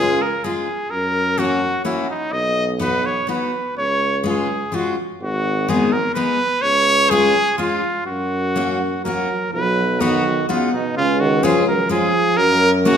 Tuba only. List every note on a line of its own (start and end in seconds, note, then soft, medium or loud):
0.00 0.41 C#2 loud
0.91 1.83 F#2 medium
2.32 3.26 B1 loud
3.77 4.71 C#2 medium
5.21 6.13 G#1 medium
6.62 7.56 C#2 medium
8.06 9.02 F#2 medium
9.53 10.46 B1 medium
10.96 11.88 C#2 loud
12.37 12.97 F#2 loud